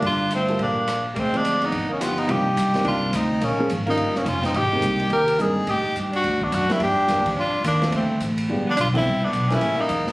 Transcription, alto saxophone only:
X:1
M:4/4
L:1/16
Q:"Swing" 1/4=213
K:Gm
V:1 name="Alto saxophone"
D4 A,4 B,6 z3/2 G,/2 | _A,2 A,4 =B,4 _B,2 =B,2 B,2 | [K:Cm] E8 D4 C4 | B,4 z2 B,4 B,2 _D2 C2 |
E8 G4 E4 | E4 z2 D4 =B,2 D2 C2 | D8 D4 B,4 | =A,4 z6 =B,2 D2 C2- |
C2 =B,4 _D4 _B,4 z2 |]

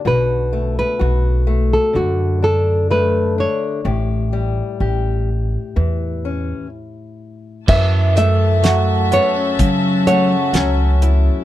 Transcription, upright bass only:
X:1
M:4/4
L:1/8
Q:1/4=63
K:F#phr
V:1 name="Upright bass" clef=bass
B,,,2 B,,,2 F,,4 | A,,,2 A,,,2 E,,2 z2 | F,,4 F,2 C,,2 |]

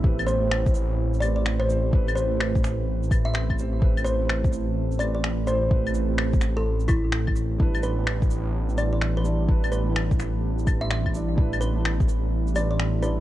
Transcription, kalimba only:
X:1
M:4/4
L:1/16
Q:"Swing 16ths" 1/4=127
K:Ephr
V:1 name="Kalimba"
z2 c2 z6 d d z c2 z | z2 c2 z6 z e e z3 | z2 c2 z6 d d z2 c2- | c z6 A2 z E3 z3 |
z2 B2 z6 d d z B2 z | z2 B2 z6 z e e z3 | z2 B2 z6 d d z2 B2 |]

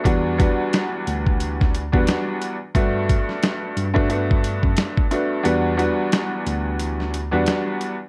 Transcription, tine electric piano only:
X:1
M:4/4
L:1/16
Q:"Swing 16ths" 1/4=89
K:Em
V:1 name="Tine electric piano" clef=bass
E,,3 z3 D,,4- D,, E,, z4 | G,,3 z3 G,,4- G,, F,, z4 | E,,3 z3 D,,4- D,, E,, z4 |]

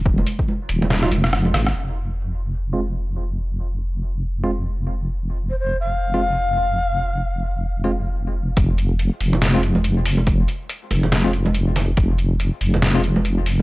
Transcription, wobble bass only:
X:1
M:4/4
L:1/8
Q:"Swing 16ths" 1/4=141
K:Ebmix
V:1 name="Wobble bass" clef=bass
E,,, z2 E,,,2 F,,,2 A,,, | F,,,8- | F,,,8- | F,,,8- |
F,,,8 | F,,,2 z F,,,4- F,,,- | F,,, z2 F,,,4- F,,, | F,,,2 z F,,,4- F,,, |]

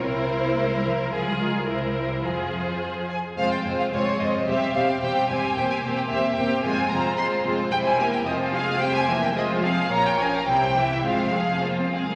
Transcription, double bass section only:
X:1
M:2/4
L:1/8
Q:1/4=110
K:Fm
V:1 name="Double bass section" clef=bass
C,,4 | D,,2 C,,2 | F,,3 z | F,,, F,,, F,,, F,,, |
=E,,, E,,, E,,, E,,, | =E,,, E,,, E,,, E,,, | F,,, F,,, F,,, F,,, | =E,,,2 F,,,2- |
F,,,4 | B,,,2 C,,2 | F,,,3 z |]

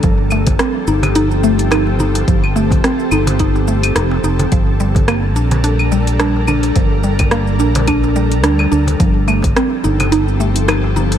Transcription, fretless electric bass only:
X:1
M:4/4
L:1/8
Q:"Swing 16ths" 1/4=107
K:Fmix
V:1 name="Fretless electric bass" clef=bass
G,,,2 z G,,,4- G,,, | G,,,2 z G,,,3 F,,, F,,, | G,,,3 B,,,4- B,,, | G,,,3 B,,,3 D,, D,, |
G,,,2 z G,,,4- G,,, |]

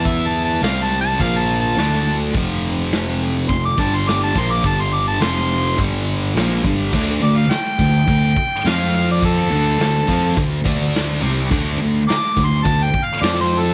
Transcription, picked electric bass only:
X:1
M:4/4
L:1/8
Q:1/4=105
K:Dm
V:1 name="Picked electric bass" clef=bass
E,,2 C,,2 B,,,2 D,,2 | F,,,4 F,,, G,,,2 B,,, | G,,,2 F,,,2 G,,,2 B,,, G,,, | D,, D,, z D,, D,, z F,,2- |
F,, D,, D,, F,, D,, D,,2 C,, | D,, D,, z D,, D,, z F,,2 |]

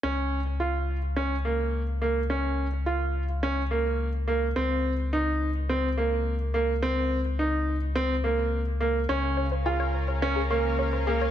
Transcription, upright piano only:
X:1
M:4/4
L:1/8
Q:1/4=106
K:Db
V:1 name="Upright piano"
D2 F2 D B,2 B, | D2 F2 D B,2 B, | C2 E2 C B,2 B, | C2 E2 C B,2 B, |
D2 F2 D B,2 B, |]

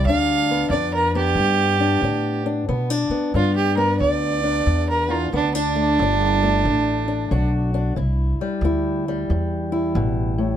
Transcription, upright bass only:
X:1
M:4/4
L:1/8
Q:"Swing" 1/4=91
K:Gmix
V:1 name="Upright bass" clef=bass
D,,2 F,,2 G,,2 A,,2 | B,, z G,,2 D,,2 E,,2 | D,,2 G,,,2 A,,,2 B,,,2 | C,, z D,,2 E,,2 A,,,2 |]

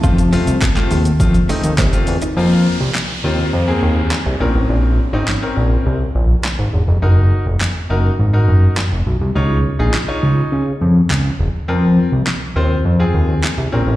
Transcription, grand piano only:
X:1
M:4/4
L:1/16
Q:1/4=103
K:Fphr
V:1 name="Grand piano"
[=A,CF] z [A,CF] z2 [A,CF] z2 [A,CF] z [A,CE] z2 [A,CF] z2 | [B,CF]3 z3 [B,CF] z2 [B,CA]3 z2 [CDB]2- | [CDB]2 z [CDE] z [CDB]4 z6 z | [EGB]3 z3 [EGB] z2 [EGB]3 z4 |
[EFd] z2 [EFA] z [EFd]4 z6 z | [CFB]3 z3 [CFc] z2 [CFA]3 z2 [CDB]2 |]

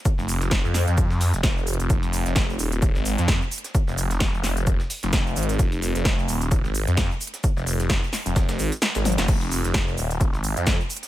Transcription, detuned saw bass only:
X:1
M:4/4
L:1/16
Q:"Swing 16ths" 1/4=130
K:Fm
V:1 name="Detuned saw bass" clef=bass
z F,,,4 F,,2 F,,4 F,,, F,,,3 F,,, | F,,,3 F,,,3 E,,,3 A,,,2 F,,2 z3 | z F,,,4 F,,,4 z2 F,,,3 A,,,2 | F,,,3 F,,,3 E,,,3 A,,,2 F,,2 z3 |
z F,,,4 z2 F,,,3 A,,, z2 A,,,2 F,,, | F,,,3 F,,,3 E,,,3 A,,,2 F,,2 z3 |]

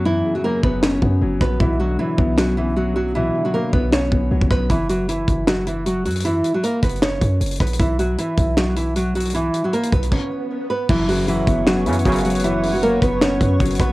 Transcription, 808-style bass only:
X:1
M:4/4
L:1/16
Q:1/4=155
K:F#phr
V:1 name="808-style bass" clef=bass
F,,2 z4 F,,,4 F,,2 F,,,2 ^A,,,2 | B,,,4 z2 B,,,8- B,,,2- | B,,,2 z4 B,,,4 B,,,2 B,,, B,,, B,,,2 | F,,,6 F,,,8 F,,2- |
F,,2 z4 F,,,4 F,,2 F,,,2 ^A,,,2 | B,,,4 z2 B,,,8- B,,,2- | B,,,2 z4 B,,,2 z8 | F,,,6 F,,,4 F,,2 F,,,4- |
F,,,6 F,,,4 F,,2 F,,,2 ^A,,,2 |]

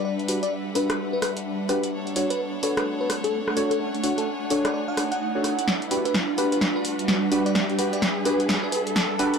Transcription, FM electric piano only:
X:1
M:4/4
L:1/16
Q:"Swing 16ths" 1/4=128
K:Edor
V:1 name="FM electric piano"
d z2 d z2 B z2 B B z4 z | z3 B z2 B B z B z A3 z A | A z2 A z3 d d f z f4- f | z3 B z2 B B z B z4 z d |
d z2 d z2 B z2 B B z4 z |]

